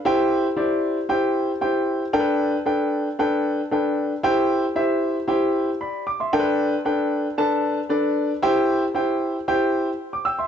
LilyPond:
\new Staff \with { instrumentName = "Grand piano" } { \time 4/4 \key c \lydian \tempo 4 = 115 << { r1 | r1 | r2. <d'' b''>8 d'''16 <e'' c'''>16~ | <e'' c'''>16 r2. r8. |
r2. r16 d'''16 <g'' e'''>16 <e'' c'''>16 | } \\ { <e' g' c'' g''>8. r16 <e' g' c'' d''>8. r16 <e' g' c'' g''>8. r16 <e' g' c'' g''>8. r16 | <d' a' bes' b' g''>8. r16 <d' a' b' g''>8. r16 <d' a' b' g''>8. r16 <d' a' b' g''>8. r16 | <e' g' c'' g''>8. r16 <e' g' c'' e''>8. r16 <e' g' c'' g''>8. r4 r16 | <d' a' bes' b' g''>8. r16 <d' a' b' g''>8. r16 <d' a' b' a''>8. r16 <d' a' b' d''>8. r16 |
<e' g' c'' g''>8. r16 <e' g' c'' g''>8. r16 <e' g' c'' g''>8. r4 r16 | } >> }